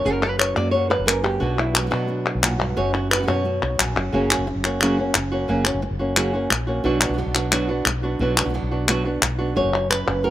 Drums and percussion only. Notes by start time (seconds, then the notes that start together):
0.40 clap
1.08 clap
1.25 clap
1.75 clap
1.92 clap
2.43 clap
2.60 clap
2.94 clap
3.12 clap
3.29 clap
3.63 clap
3.80 clap
3.97 clap
4.31 clap
4.64 clap
4.81 clap
5.14 clap
5.65 clap
6.16 clap
6.51 clap
7.01 clap
7.35 clap
7.52 clap
7.85 clap
8.37 clap
8.88 clap
9.22 clap
9.74 clap
9.91 clap
10.08 clap